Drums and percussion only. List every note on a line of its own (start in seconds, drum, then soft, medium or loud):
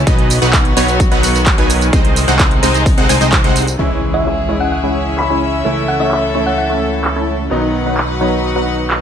0.07 kick loud
0.07 closed hi-hat medium
0.07 tambourine soft
0.19 closed hi-hat soft
0.30 open hi-hat loud
0.30 tambourine medium
0.42 closed hi-hat soft
0.42 tambourine soft
0.53 kick loud
0.53 clap loud
0.53 closed hi-hat medium
0.53 tambourine soft
0.65 closed hi-hat soft
0.77 open hi-hat loud
0.77 tambourine medium
0.88 closed hi-hat soft
0.88 tambourine soft
1.00 kick loud
1.00 closed hi-hat medium
1.00 tambourine soft
1.12 closed hi-hat soft
1.23 open hi-hat loud
1.23 tambourine medium
1.36 tambourine soft
1.46 kick loud
1.46 clap loud
1.46 closed hi-hat medium
1.46 tambourine soft
1.58 closed hi-hat soft
1.70 open hi-hat loud
1.70 tambourine medium
1.81 closed hi-hat soft
1.81 tambourine soft
1.93 kick loud
1.93 closed hi-hat medium
1.93 tambourine soft
2.05 closed hi-hat soft
2.16 open hi-hat loud
2.16 tambourine medium
2.28 closed hi-hat soft
2.28 tambourine soft
2.39 kick loud
2.39 clap loud
2.39 closed hi-hat medium
2.39 tambourine soft
2.51 closed hi-hat soft
2.63 open hi-hat loud
2.63 tambourine medium
2.74 closed hi-hat soft
2.74 tambourine soft
2.86 kick loud
2.86 open hi-hat medium
2.86 tambourine soft
2.98 closed hi-hat soft
3.09 open hi-hat loud
3.09 tambourine medium
3.21 closed hi-hat soft
3.21 tambourine soft
3.32 kick loud
3.32 clap loud
3.32 closed hi-hat medium
3.32 tambourine soft
3.44 closed hi-hat soft
3.56 open hi-hat loud
3.56 tambourine medium
3.67 closed hi-hat soft
3.67 tambourine medium
4.25 clap loud
5.18 clap loud
6.11 clap loud
7.04 clap loud
7.97 clap loud
8.90 clap loud